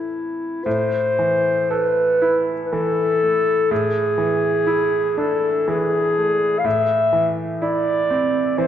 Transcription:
0.00 0.59 A2 soft
0.00 0.59 E3 soft
0.00 0.60 C4 soft
0.00 0.66 E4 soft
0.00 0.61 A4 soft
0.65 3.67 A2 soft
0.65 1.71 C5 medium
1.19 2.01 E3 soft
1.70 2.52 A4 soft
1.70 2.48 B4 medium
2.22 3.03 E4 soft
2.65 2.74 B4 soft
2.73 3.52 E3 soft
2.73 3.73 A4 medium
3.23 3.71 A3 soft
3.71 6.61 A2 soft
3.71 5.20 G#4 medium
4.18 4.97 E3 soft
4.67 5.48 E4 soft
5.17 5.98 D4 soft
5.17 5.70 A4 soft
5.68 6.46 E3 soft
5.68 6.60 G#4 medium
6.17 6.65 A3 soft
6.59 6.67 F5 soft
6.64 8.67 A2 soft
6.64 7.34 E5 medium
7.13 7.91 E3 soft
7.62 8.39 E4 soft
7.62 8.59 D5 medium
8.10 8.67 C4 soft
8.58 8.67 E3 soft
8.58 8.67 C5 medium

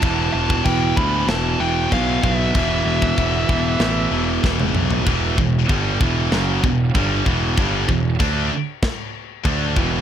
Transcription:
0.00 0.29 E1 loud
0.00 1.63 E2 medium
0.00 1.58 B2 loud
0.00 0.30 E4 loud
0.00 0.32 A5 loud
0.00 kick loud
0.00 china medium
0.05 1.60 E3 loud
0.33 0.61 E1 medium
0.33 0.63 F4 medium
0.33 0.64 A5 loud
0.50 kick medium
0.65 0.92 E1 medium
0.65 0.95 E4 medium
0.65 0.97 G5 loud
0.65 kick medium
0.65 china medium
0.95 1.23 D2 loud
0.95 2.53 B2 medium
0.95 2.57 E3 medium
0.95 1.25 G4 medium
0.95 1.29 B5 loud
0.95 kick loud
1.00 2.54 E2 medium
1.27 1.54 E1 loud
1.27 1.57 E4 loud
1.27 1.61 A5 loud
1.27 snare loud
1.27 china medium
1.59 1.86 E1 medium
1.59 1.91 E2 medium
1.59 1.90 B2 medium
1.59 1.93 E3 loud
1.59 1.89 E4 medium
1.59 1.92 G5 loud
1.89 2.18 B1 loud
1.89 2.55 E2 medium
1.89 2.53 B2 medium
1.89 2.20 B3 loud
1.89 2.24 F5 loud
1.89 kick medium
1.89 china medium
1.94 2.57 E3 loud
2.22 2.50 B1 loud
2.22 4.38 B3 medium
2.22 4.39 E5 loud
2.22 kick medium
2.55 2.81 E1 loud
2.55 4.10 E2 medium
2.55 4.10 B2 loud
2.55 4.10 E3 loud
2.55 kick loud
2.55 china medium
2.85 3.12 E1 medium
3.02 kick medium
3.18 3.44 E1 medium
3.18 kick medium
3.18 china medium
3.49 3.75 E1 loud
3.49 5.05 E2 medium
3.49 5.05 B2 medium
3.49 5.04 E3 medium
3.49 kick medium
3.80 4.06 A1 loud
3.80 snare loud
3.80 china medium
4.11 4.38 E1 medium
4.11 4.42 E2 medium
4.11 4.41 B2 medium
4.11 4.41 E3 medium
4.43 4.70 E1 medium
4.43 5.04 E2 medium
4.43 5.04 B2 medium
4.43 5.05 E3 medium
4.43 kick medium
4.43 snare medium
4.60 high tom medium
4.73 5.00 B1 medium
4.73 mid tom loud
4.90 floor tom loud
5.06 5.35 E1 medium
5.06 5.36 E2 loud
5.06 5.37 B2 loud
5.06 5.37 E3 loud
5.06 kick loud
5.06 china medium
5.38 5.66 E1 medium
5.38 5.63 E2 medium
5.38 5.63 B2 medium
5.38 kick medium
5.69 5.98 G1 loud
5.69 5.99 G2 medium
5.69 5.99 D3 medium
5.69 6.00 G3 loud
5.69 kick loud
5.69 china medium
6.00 6.29 E1 loud
6.00 6.30 E2 medium
6.00 6.31 B2 loud
6.00 6.31 E3 loud
6.00 kick loud
6.32 6.61 F#1 loud
6.32 6.62 F#2 loud
6.32 6.62 C#3 loud
6.32 6.63 F#3 loud
6.32 snare loud
6.32 china medium
6.63 6.92 E1 medium
6.63 6.89 E2 medium
6.63 6.89 B2 medium
6.63 kick loud
6.95 7.24 G1 medium
6.95 7.25 G2 medium
6.95 7.25 D3 medium
6.95 7.25 G3 loud
6.95 kick loud
6.95 china medium
7.26 7.55 E1 loud
7.26 7.56 E2 medium
7.26 7.56 B2 medium
7.26 7.57 E3 loud
7.26 kick loud
7.57 7.86 G1 medium
7.57 7.88 G2 medium
7.57 7.88 D3 loud
7.57 7.89 G3 loud
7.57 kick loud
7.57 china medium
7.89 8.18 E1 medium
7.89 8.14 E2 medium
7.89 8.14 B2 medium
7.89 kick medium
8.19 8.49 D2 medium
8.19 8.50 D3 medium
8.19 8.50 A3 medium
8.19 8.50 D4 loud
8.19 kick loud
8.19 china medium
8.83 kick loud
8.83 snare loud
8.83 china medium
9.44 9.74 D2 loud
9.44 9.75 D3 medium
9.44 9.75 A3 loud
9.44 9.76 D4 loud
9.44 kick loud
9.44 china medium
9.76 10.01 E1 loud
9.76 10.01 E2 medium
9.76 10.01 B2 loud
9.76 10.01 E3 loud
9.76 kick loud

